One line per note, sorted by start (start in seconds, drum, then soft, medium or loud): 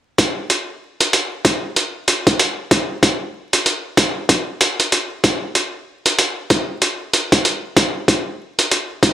0.18 kick loud
0.18 closed hi-hat medium
0.50 closed hi-hat medium
1.00 closed hi-hat medium
1.13 closed hi-hat medium
1.45 kick loud
1.45 closed hi-hat medium
1.76 closed hi-hat medium
2.08 closed hi-hat medium
2.27 kick medium
2.27 closed hi-hat medium
2.39 closed hi-hat medium
2.71 kick loud
2.71 closed hi-hat medium
3.03 kick loud
3.03 closed hi-hat medium
3.53 closed hi-hat medium
3.66 closed hi-hat medium
3.97 kick loud
3.97 closed hi-hat medium
4.29 kick medium
4.29 closed hi-hat medium
4.61 closed hi-hat medium
4.80 closed hi-hat medium
4.92 closed hi-hat medium
5.24 kick loud
5.24 closed hi-hat medium
5.55 closed hi-hat medium
6.06 closed hi-hat medium
6.19 closed hi-hat medium
6.50 kick loud
6.50 closed hi-hat medium
6.82 closed hi-hat medium
7.13 closed hi-hat medium
7.32 kick loud
7.32 closed hi-hat medium
7.45 closed hi-hat medium
7.77 kick loud
7.77 closed hi-hat medium
8.08 kick loud
8.08 closed hi-hat medium
8.59 closed hi-hat medium
8.71 closed hi-hat medium
9.03 kick loud
9.03 closed hi-hat medium